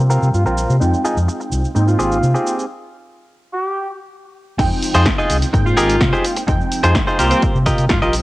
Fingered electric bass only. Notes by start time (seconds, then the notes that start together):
0.00 C3
0.22 C3
0.34 G2
0.46 A#1
0.70 C3
0.81 F2
1.17 F2
1.52 C2
1.76 G#2
1.99 G#1
2.23 C3
4.59 F2
4.95 F2
5.30 C2
5.54 G#2
5.77 G#1
6.01 C3
6.48 F2
6.84 F2
7.19 C2
7.55 C3
7.79 C3
7.90 G2
8.02 A#1